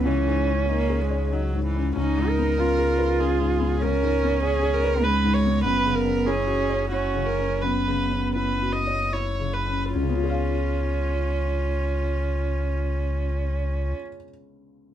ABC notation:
X:1
M:3/4
L:1/8
Q:1/4=92
K:F#mix
V:1 name="Viola"
E,2 A, G, F, E, | C A3 G2 | A2 G A B c | B A G2 F A |
B2 B d c B | ^E6- | ^E6 |]
V:2 name="Cello"
C4 z2 | D2 ^E4 | C4 G,2 | B,2 C2 C2 |
B,4 z2 | C6- | C6 |]
V:3 name="Felt piano"
(3[C,,C] G,, C (3D G c (3D G,, C | (3C,, G,, B, (3C G B (3C G,, B, | (3C,, G,, B, (3C G B (3C G,, B, | (3F,, C, C (3E F c (3E C, C |
(3F,, C, C (3E F c (3E C, C | [C,,C,B,^EG^e]6- | [C,,C,B,^EG^e]6 |]
V:4 name="Sub bass" clef=bass
C,,6 | C,,6- | C,,6 | F,,,6- |
F,,,6 | C,,6- | C,,6 |]